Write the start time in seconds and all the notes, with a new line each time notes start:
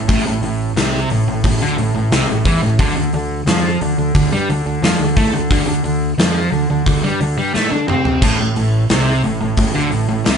0.08 A1 A2, kick, open hi-hat
0.26 A1 A2
0.42 A1 A2, open hi-hat
0.76 C2 C3, snare, open hi-hat
1.10 A1 A2, open hi-hat
1.27 A1 A2
1.44 A1 A2, kick, open hi-hat
1.61 D2 D3
1.78 A1 A2, open hi-hat
1.96 A1 A2
2.12 C2 C3, snare, open hi-hat
2.29 A1 A2
2.45 E2 E3, kick, open hi-hat
2.63 A1 A2
2.79 D2 D3, kick, open hi-hat
2.97 D2 D3
3.13 D2 D3, open hi-hat
3.47 F2 F3, snare, open hi-hat
3.81 D2 D3, open hi-hat
3.98 D2 D3
4.15 D2 D3, kick, open hi-hat
4.32 G2 G3
4.49 D2 D3, open hi-hat
4.66 D2 D3
4.83 F2 F3, snare, open hi-hat
5.00 D2 D3
5.16 A2 A3, kick, open hi-hat
5.34 D2 D3
5.51 D2 D3, kick, open hi-hat
5.68 D2 D3
5.84 D2 D3, open hi-hat
6.18 F2 F3, snare, open hi-hat
6.52 D2 D3, open hi-hat
6.70 D2 D3
6.86 D2 D3, kick, open hi-hat
7.03 G2 G3
7.20 D2 D3, open hi-hat
7.38 G2 G3
7.54 A2 A3, snare
7.71 D3 D4
7.88 C3 C4, mid tom
8.05 floor tom
8.22 A1 A2, kick, splash, crash
8.39 A1 A2
8.56 A1 A2, open hi-hat
8.89 C2 C3, snare, open hi-hat
9.24 A1 A2, open hi-hat
9.41 A1 A2
9.57 A1 A2, kick, open hi-hat
9.75 D2 D3
9.91 A1 A2, open hi-hat
10.09 A1 A2
10.25 C2 C3, snare, open hi-hat